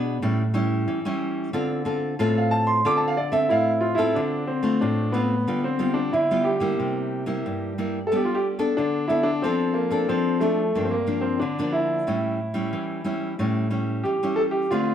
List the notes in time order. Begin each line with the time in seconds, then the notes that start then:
Already playing: B2 B3 D4 G#4 F#5
0.22 A2 G3 C#4 E4
0.54 G3 C#4 E4
0.88 E3
1.05 G3 C#4 E4
1.53 D3 C4 F4 A4
1.85 C4 F4 A4
2.19 A2 C4 F4 A4
2.38 F5
2.51 A5
2.67 C6
2.85 D3 C4 F4 A4 D6
2.97 A5
3.08 F5
3.17 D5
3.32 C4 A4 E5
3.49 A2 E4 F5
3.81 F4
3.95 C4 E4 F4 A4
4.15 D3 D4
4.47 C4
4.63 A3 C4 F4
4.81 A2 D4
5.12 A3 B3 C4 F4
5.48 D3 G3 B3 F4
5.64 C4
5.79 G3 B3 F4
5.94 D4
6.13 D3 E4
6.31 G3 B3 F4
6.44 G4
6.60 G3 A#3 E4
6.80 C3
7.26 G3 A#3 E4
7.46 G2
7.78 G3 A#3 E4
8.07 A4
8.12 G3 B3 D4 A4
8.16 G4
8.25 F4
8.35 G4
8.59 B3 D4 A4
8.77 D3 D4
9.08 B3 D4 E4 A4
9.23 D4
9.42 F3 C4 D4 A4
9.74 A#3
9.91 C4 D4 A4
10.09 F3 C4
10.40 A3 C4 D4 A4
10.75 G2 F3 A#3 D4
10.84 C4
10.91 A#3
11.07 F3 A#3 D4
11.21 C4
11.39 D3 D4
11.59 F3 A#3 D4
11.72 E4
12.07 A2 G3 C#4 E4
12.54 G3 C#4 E4
12.73 E3
13.04 G3 C#4 E4
13.39 A2 G3 C#4 E4
13.70 G3 C#4 E4
14.04 E3 G4
14.23 G3 C#4 E4
14.36 A4
14.51 G4
14.71 D3 A3 C4 F4